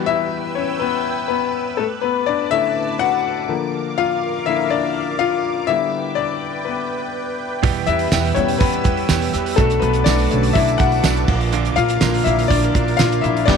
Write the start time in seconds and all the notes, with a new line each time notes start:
Already playing: E3 G3 B3 B4 G5 E6
0.06 E4 E5
0.55 C#4 C#5
0.79 B3 B4
1.28 B3 B4
1.77 A3 A4 A5 D6
2.01 B3 B4
2.26 D4 D5
2.51 D3 A3 C#4 E4 E5
2.99 F#4 F#5
3.48 D3 F3 A#3 A#4 F5
3.98 F4 F5
4.46 D3 F3 A#3 E4 E5
4.70 D4 D5
5.19 F4 F5
5.67 D3 G3 B3 E4 B4 E5 G5
6.15 D4 D5
6.65 B3 B4
7.62 E2 B2 E3 G3 B3 G4 E6, kick, open hi-hat
7.86 E2 G3 B3 E4 G4 E5, hi-hat pedal, open hi-hat
7.99 open hi-hat
8.12 E2 B2 E3 G3 B3 G4, snare, hi-hat pedal, open hi-hat, tambourine
8.24 hi-hat pedal, open hi-hat
8.35 E2 E3 G3 B3 C#4 C#5, hi-hat pedal, open hi-hat
8.48 hi-hat pedal, open hi-hat
8.58 E2 E3 G3 B3 B4, kick, hi-hat pedal, open hi-hat
8.63 G4
8.73 hi-hat pedal
8.84 E2 E3 G3 B3 G4, kick, hi-hat pedal, open hi-hat
8.97 open hi-hat
9.09 E2 B2 E3 G3 B3 G4, snare, hi-hat pedal, open hi-hat, tambourine
9.21 hi-hat pedal, open hi-hat
9.34 E2 E3 G3 B3 G4, snare, hi-hat pedal, open hi-hat
9.46 hi-hat pedal, open hi-hat
9.56 B1 B2 F#3 A3 D4 F#4 A4 A5 D6, kick, hi-hat pedal, open hi-hat
9.70 hi-hat pedal, open hi-hat
9.80 B1 B3 D4 F#4 B4, hi-hat pedal, open hi-hat
9.84 A3
9.93 hi-hat pedal, open hi-hat
10.04 B1 B2 F#3 A3 D4 D5, snare, hi-hat pedal, open hi-hat, tambourine
10.08 F#4
10.19 hi-hat pedal, open hi-hat
10.31 B1 D3 A3 C#4, hi-hat pedal, open hi-hat
10.43 hi-hat pedal, open hi-hat
10.53 B1 F#3 A3 D4 E4 E5, kick, hi-hat pedal, open hi-hat
10.57 F#4
10.68 hi-hat pedal
10.78 B1 A3 D4 F#4 F#5, kick, hi-hat pedal, open hi-hat
10.92 open hi-hat
11.04 B1 B2 F#3 A3 D4 F#4, snare, hi-hat pedal, open hi-hat, tambourine
11.16 hi-hat pedal
11.28 A#1 A#3 D4 F4 A#4 F5, kick, crash
11.41 open hi-hat
11.52 A#2 D3 A#3 D4 F4, hi-hat pedal, open hi-hat
11.65 hi-hat pedal, open hi-hat
11.76 A#1 A#3 F4 F5, hi-hat pedal, open hi-hat
11.89 hi-hat pedal, open hi-hat
12.01 A#1 A#2 D3 F3 A#3 D4 F4, snare, hi-hat pedal, open hi-hat, tambourine
12.14 hi-hat pedal, open hi-hat
12.24 A#1 E4 E5, hi-hat pedal, open hi-hat
12.39 hi-hat pedal, open hi-hat
12.48 A#1 D3 A#3 D4 D5, kick, hi-hat pedal, open hi-hat
12.52 F4
12.63 hi-hat pedal
12.74 A#1 A#3 D4 F4, kick, hi-hat pedal, open hi-hat
12.88 open hi-hat
12.97 A#1 A#2 D3 A#3 D4 F4 F5, snare, hi-hat pedal, open hi-hat, tambourine
13.01 F4
13.12 hi-hat pedal
13.21 A#1 F3 A#3 D4 E4 F4 E5, hi-hat pedal, open hi-hat
13.25 A#3
13.37 open hi-hat
13.46 G1 G2 D3 G3 B3 D4 G4 B4 D5 G5 D6, kick, snare, crash